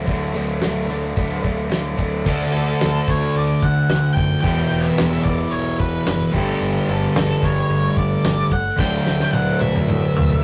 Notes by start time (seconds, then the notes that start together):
0.06 D2 D3 F#3 A3 D4, kick, open hi-hat
0.33 D2 D3 F#3 A3 D4, open hi-hat
0.61 D2 D3 F#3 A3 D4, snare, open hi-hat
0.88 D3 F#3 A3 D4, open hi-hat
1.16 D2 D3 F#3 A3 D4, kick, open hi-hat
1.43 D2 D3 F#3 A3 D4, kick, open hi-hat
1.68 D2 D3 F#3 A3 D4, snare, open hi-hat
1.97 D2 D3 F#3 A3 D4, kick, open hi-hat
2.25 D2 D3 A3 D4 F#4, kick, crash
2.52 D2 A4
2.81 D2, snare, open hi-hat
3.08 D2 C#5, kick
3.35 D2 D5, open hi-hat
3.63 D2 F#5, kick
3.89 D2, snare, open hi-hat
4.13 F#2 G5, snare
4.17 kick
4.41 E1 E2 E3 B3 G5, kick, open hi-hat
4.45 B2 E4 G4
4.71 E1
4.81 E5
4.98 E1, snare, open hi-hat
5.12 snare
5.23 E1 D5, kick
5.51 B1 C#5, open hi-hat
5.79 E1 B4, kick
6.06 F#1, snare, open hi-hat
6.31 G1 G2 G3 A3 D4 G4, kick
6.36 D3 G3
6.60 G1, open hi-hat
6.89 G1 A4
7.15 G1, snare, open hi-hat
7.30 snare
7.43 G1 C#5, kick
7.69 G1, open hi-hat
7.97 G1 D5, kick
8.24 G1, snare, open hi-hat
8.52 G1 F#5, kick
8.76 D2 D3 F#3 A3 D4 F#4 G5, kick, snare
9.06 D2, snare
9.20 snare
9.33 D2 F#5, high tom
9.61 D2 E5, high tom
9.75 mid tom
9.87 A2, mid tom
10.14 D2, mid tom
10.30 mid tom